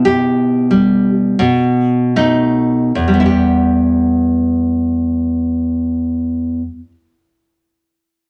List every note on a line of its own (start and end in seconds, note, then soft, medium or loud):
0.00 1.34 B2 loud
0.00 1.38 E4 medium
0.05 1.10 G4 loud
0.71 1.39 G3 medium
1.39 2.91 B2 medium
2.16 2.91 A3 medium
2.16 2.91 D#4 loud
2.95 6.61 E2 medium
3.08 6.73 G3 medium
3.14 6.80 B3 medium
3.20 3.25 E4 medium
3.26 6.91 G4 medium